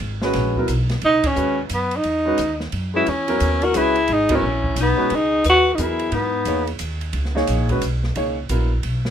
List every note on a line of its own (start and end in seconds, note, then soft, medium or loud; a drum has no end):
0.00 0.34 G#1 medium
0.00 ride medium
0.22 0.55 G#3 medium
0.22 0.55 C#4 medium
0.22 0.55 F#4 medium
0.22 0.55 B4 medium
0.22 snare medium
0.33 0.68 A#1 medium
0.33 snare soft
0.33 ride medium
0.56 0.68 F#3 medium
0.56 0.68 B3 medium
0.56 0.69 E4 medium
0.56 0.69 A#4 medium
0.56 kick medium
0.68 1.01 B1 medium
0.68 hi-hat pedal medium
0.68 ride medium
0.89 snare soft
0.89 ride soft
1.01 1.23 C#2 medium
1.01 1.28 D#4 loud
1.01 ride medium
1.24 1.60 C#4 medium
1.24 muted upright bass stroke soft
1.24 kick medium
1.24 ride medium
1.36 1.69 D#2 medium
1.36 1.56 G#3 medium
1.36 1.56 C#4 medium
1.36 1.57 F#4 medium
1.36 1.57 B4 medium
1.36 hi-hat pedal medium
1.69 2.04 F#2 medium
1.69 hi-hat pedal medium
1.69 ride medium
1.74 1.98 B3 medium
1.91 ride soft
1.96 2.63 D#4 medium
2.03 2.38 E2 medium
2.03 ride medium
2.25 2.37 G#3 medium
2.25 2.38 C#4 medium
2.25 2.38 F#4 medium
2.25 2.38 B4 medium
2.38 2.72 D#2 medium
2.38 hi-hat pedal medium
2.38 ride medium
2.60 snare soft
2.72 3.06 F#2 medium
2.72 ride medium
2.94 3.05 G#3 medium
2.94 3.06 C#4 medium
2.94 3.10 E4 medium
2.94 3.06 F#4 medium
2.94 3.08 G#4 medium
2.94 3.06 B4 medium
3.06 3.40 E2 medium
3.06 3.66 C#4 medium
3.06 3.64 E4 medium
3.06 ride medium
3.28 3.72 F#3 medium
3.28 3.72 B3 medium
3.28 3.73 E4 medium
3.28 3.73 A#4 medium
3.28 ride soft
3.40 3.74 D#2 medium
3.40 hi-hat pedal soft
3.40 ride medium
3.62 3.79 F#4 medium
3.62 3.76 A#4 medium
3.62 ride soft
3.74 4.08 C#2 medium
3.74 3.94 G#3 medium
3.74 3.94 C#4 medium
3.74 4.14 E4 medium
3.74 3.94 F#4 medium
3.74 4.10 G#4 medium
3.74 3.95 B4 medium
3.74 hi-hat pedal medium
3.74 ride medium
3.95 ride soft
4.08 4.41 G#1 medium
4.08 4.34 G#4 medium
4.08 ride medium
4.13 4.37 D#4 loud
4.29 4.41 F#3 medium
4.29 4.41 B3 medium
4.29 4.42 E4 medium
4.29 4.78 E4 medium
4.29 4.42 A#4 medium
4.29 kick medium
4.29 ride medium
4.35 4.79 C#4 medium
4.42 4.75 A#1 medium
4.64 kick medium
4.76 4.96 B1 medium
4.76 hi-hat pedal medium
4.76 ride medium
4.80 5.17 B3 medium
4.80 5.14 D#4 medium
4.97 5.09 G#3 medium
4.97 5.09 C#4 medium
4.97 5.09 F#4 medium
4.97 5.10 B4 medium
5.10 5.44 C#2 medium
5.10 5.45 G#4 medium
5.10 ride medium
5.15 5.47 D#4 loud
5.44 5.78 D#2 medium
5.44 5.75 B4 medium
5.44 hi-hat pedal medium
5.44 ride medium
5.49 5.76 F#4 loud
5.73 5.83 D#4 medium
5.73 5.81 F#4 medium
5.78 6.11 E2 medium
5.78 6.29 F#3 medium
5.78 6.30 B3 medium
5.78 6.30 E4 medium
5.78 6.16 E4 medium
5.78 6.14 G#4 medium
5.78 6.30 A#4 medium
5.78 hi-hat pedal medium
5.78 ride medium
5.99 ride soft
6.12 6.44 G#2 medium
6.12 6.69 B3 medium
6.12 6.68 D#4 medium
6.12 ride medium
6.45 6.78 E2 medium
6.45 6.66 A#3 medium
6.45 6.66 D#4 medium
6.45 6.66 G#4 medium
6.45 6.67 C#5 medium
6.45 hi-hat pedal medium
6.45 ride medium
6.67 ride soft
6.79 7.12 D#2 medium
6.79 hi-hat pedal medium
6.79 ride medium
7.01 ride soft
7.13 7.46 C#2 medium
7.13 ride medium
7.25 snare soft
7.35 7.67 A#3 medium
7.35 7.67 D#4 medium
7.35 7.68 G#4 medium
7.35 7.68 C#5 medium
7.35 snare soft
7.47 7.81 A#1 medium
7.47 hi-hat pedal soft
7.47 ride medium
7.69 7.81 G#3 medium
7.69 7.81 C#4 medium
7.69 7.81 F#4 medium
7.69 7.81 B4 medium
7.69 kick medium
7.69 ride soft
7.81 8.15 B1 medium
7.81 hi-hat pedal soft
7.81 ride medium
8.03 snare soft
8.15 8.49 C#2 medium
8.15 8.35 A#3 medium
8.15 8.35 D#4 medium
8.15 8.36 G#4 medium
8.15 8.36 C#5 medium
8.15 ride medium
8.49 8.83 A#1 medium
8.49 8.69 F#3 medium
8.49 8.69 B3 medium
8.49 8.70 E4 medium
8.49 8.70 A#4 medium
8.49 hi-hat pedal soft
8.49 ride medium
8.83 9.10 B1 medium
8.83 ride medium
9.05 snare medium